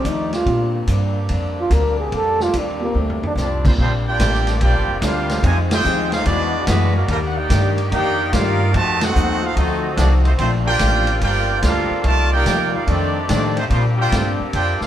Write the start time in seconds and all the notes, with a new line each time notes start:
Already playing: F3 A3 G4 D5
0.03 D#2 F2 D#3 A3 D4, kick, hi-hat pedal, ride
0.08 D#4
0.33 F4, snare, ride
0.45 A#2 D3 G3 A#3 C4 D4 F4 G4, kick, ride
0.87 G2 A#2 G3 C4 D4, kick, hi-hat pedal, ride
1.29 F2 A#2 G3 C4 D4, kick, ride
1.60 F4
1.70 D2 A#2 G3 C4 D4 A#4, kick, hi-hat pedal, ride
2.00 G#4
2.11 F2 A#2 G3 C4 D4, kick, ride
2.16 A4
2.40 F4, snare
2.52 D#2 A#2 G3 C4 D4, kick, hi-hat pedal, ride
2.58 D4
2.80 A#3 C4 D4 F4 G4
2.94 D2 A#2 G3 C4 D4
2.99 A3
3.10 floor tom
3.23 D4, floor tom
3.35 C2 A#2 F3 G3 C4 D4, snare, hi-hat pedal
3.40 C4 F4 G4 D5
3.64 F3 G3 A#3 C4 D4 F4 A#4 C5, kick, crash
3.68 F4
3.77 A#1 A#2 D3 F3 G3 A#3 C4 D4 F4 G4 C5, kick
4.06 G3 D4 F4 G4 C5 D5 G5
4.20 A1 A#2 G3 C4 D4, kick, snare, hi-hat pedal, ride
4.34 snare
4.47 snare, ride
4.61 A#1 A#2 G3 C4 D4 F4 G4 C5 D5 G5, kick, ride
4.74 G1
4.88 F1
4.99 D2 A#2 G3 D4 F4 D#5, kick, snare, hi-hat pedal, ride
5.03 C4 D4 G4 C5 F5
5.29 snare, ride
5.42 F2 C3 D#3 F3 G#3 C4 D#4 F4 G#4 C5 D#5 G#5, kick, ride
5.71 C4 D#4 F4 G4 C5 D#5 G5, snare, ride
5.85 D#2 F3 C4 D#4 G#4, hi-hat pedal
6.12 G#3 C4 D#4 F4 G#4 C5 F5, snare, ride
6.25 E2 E3 G#3 B3 D4 F#4 G#4 D5, kick, ride
6.67 F#2 D3 E3 G#3 B3 D4 F#4 B4, kick, snare, hi-hat pedal, ride
6.95 F#3 A#3 B3 D4 A#4
7.08 D#2 D3 D#3 G3 A#3 D4 D#4 G4 A#4, kick, ride
7.27 F#5
7.35 A#3 D#4 G4 A#4 D5 G5
7.49 G2 D#3 A#3 D4 G4, kick, snare, hi-hat pedal, ride
7.78 ride
7.90 F2 D#3 A#3 D4 D#4 G4 A#4 D5 G5, kick, ride
8.32 G2 D#3 A#3 D4 D#4 F4 G4 A#4 D5 F5, kick, snare, hi-hat pedal, ride
8.73 F2 C3 D#3 F3 A3 C4 D#4 F#4 C5 D#5 A5, kick, ride
9.00 C4 D#4 F#4 A4 C5 F#5, snare, ride
9.15 D#2 F3 A3 D#4 F#4, hi-hat pedal
9.42 A3 C4 D#4 F4 A4 C5 F5
9.55 D2 F3 A3 C4 D#4 F#4 A4 D#5, kick, ride
9.59 A3 D#4 F#4
9.96 C2 F3 A3 A#3 D4 D#4 F#4 D5, kick, snare, hi-hat pedal, ride
10.00 D#4 F#4
10.23 D#3 A3 C4 C5, ride
10.27 A3 D#4 F#4
10.37 A#1 A#2 D3 F3 A3 A#3 C4 D4 F4 C5, kick, ride
10.64 A#3 D4 F4 G4 A#4 D5 G5
10.79 A1 A#2 F3 A3 D4, kick, snare, hi-hat pedal, ride
11.07 ride
11.20 G1 F3 G3 A#3 D4 F4 G4 A4 A#4 D5 G5, kick, ride
11.62 D2 G3 A#3 D4 F4 A4 A#4 F5, kick, snare, hi-hat pedal, ride
11.90 muted upright bass stroke
12.04 C2 C3 D#3 F3 A3 A#3 D#4 F4 A#4 D5 A5, kick, ride
12.32 A#3 D#4 G4 A#4 D5 G5
12.46 D#2 C3 F3 A#3 D#4, kick, snare, hi-hat pedal, ride
12.72 G3 A#3 D#4 F4 A#4 D5 F5
12.86 F2 D#3 A3 C4 D4 G4 A4 D5, kick, ride
13.27 F2 A2 D#3 A3 C4 D4 G4 A4 D5, kick, snare, hi-hat pedal, ride
13.55 D#3 A3 C4 D#4 G4 C5, ride
13.69 A#2 D3 F3 G3 A#3 C4 D4 F4 C5, kick, ride
13.97 G3 D4 F4 G4 C5 D5 G5
14.11 G2 A#2 G3 C4 D4, kick, snare, hi-hat pedal, ride
14.40 muted upright bass stroke
14.52 F2 A#2 G3 C4 D4 F4 G4 C5 D5 G5, kick, ride
14.80 G3 D4 F4 G4 C5 F5, muted upright bass stroke, snare